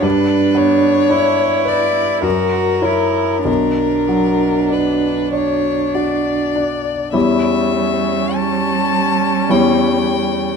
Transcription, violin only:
0.03 0.58 B4 soft
0.57 1.70 C#5 medium
1.68 2.24 D5 soft
2.24 3.45 A#4 soft
3.49 4.74 A#4 soft
4.73 5.34 B4 soft
5.34 5.96 C#5 soft
5.95 7.14 D5 soft
7.15 8.37 E5 soft
8.35 9.52 A5 medium
9.50 10.57 G5 soft

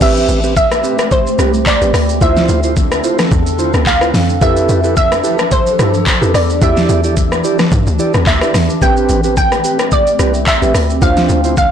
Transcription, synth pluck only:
0.02 0.56 E5 loud
0.57 1.13 E5 loud
1.12 1.68 C5 loud
1.67 2.23 D5 medium
2.22 3.28 E5 loud
3.87 4.44 F5 loud
4.42 4.96 E5 loud
4.97 5.48 E5 loud
5.52 6.37 C5 loud
6.35 6.60 D5 medium
6.62 7.68 E5 medium
8.27 8.84 E5 loud
8.82 9.36 G5 loud
9.37 9.88 G5 loud
9.93 10.49 D5 loud
10.48 10.99 E5 loud
11.02 11.57 F5 loud
11.58 11.71 F5 loud

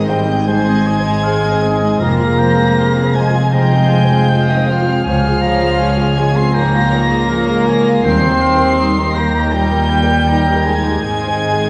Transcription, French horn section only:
0.09 0.48 G3 medium
0.47 2.00 G#3 loud
2.02 3.17 A#3 loud
3.16 3.51 G#3 medium
3.52 4.48 G#3 loud
4.50 4.68 D#3 medium
4.68 5.04 F3 loud
5.05 6.14 F3 loud
6.18 6.36 G#3 loud
6.35 6.54 C4 loud
6.55 8.05 A#3 loud
8.04 8.98 C4 loud
9.15 9.52 A#3 loud
9.51 10.64 G3 loud
10.65 11.70 G#3 loud

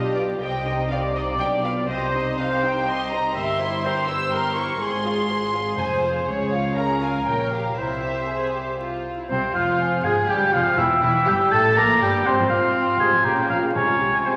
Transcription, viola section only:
0.00 0.41 G4 soft
0.42 0.91 D#5 medium
0.91 1.89 D5 medium
1.89 2.37 C5 medium
2.38 2.86 C5 medium
2.87 3.35 D#5 medium
3.36 3.83 E5 medium
3.84 4.33 C5 medium
4.34 4.82 A#4 medium
4.82 5.29 G#4 medium
5.30 5.78 G#4 medium
5.79 6.27 C5 medium
6.28 6.77 C#5 medium
6.77 7.78 A#4 medium
7.77 9.05 C5 soft
9.30 9.53 C3 medium
9.55 10.03 F3 medium
10.04 10.29 G#3 medium
10.30 10.54 G3 medium
10.54 10.79 F3 medium
10.79 11.02 E3 medium
11.03 11.28 E3 medium
11.29 11.53 G3 medium
11.53 11.77 A3 medium
11.78 12.02 A#3 medium
12.02 12.27 G3 medium
12.27 12.32 C3 medium
12.39 12.44 F3 soft
12.52 12.57 C3 soft
12.64 12.69 C3 medium
13.01 13.06 C3 medium
13.14 13.19 F3 soft
13.26 13.31 C#3 soft
13.39 13.43 C#3 medium
13.51 13.55 F3 soft
13.63 13.68 C#3 soft
13.75 13.80 C3 medium
13.88 13.93 F3 soft
14.01 14.06 C3 soft
14.14 14.19 C3 soft
14.27 14.35 C3 soft

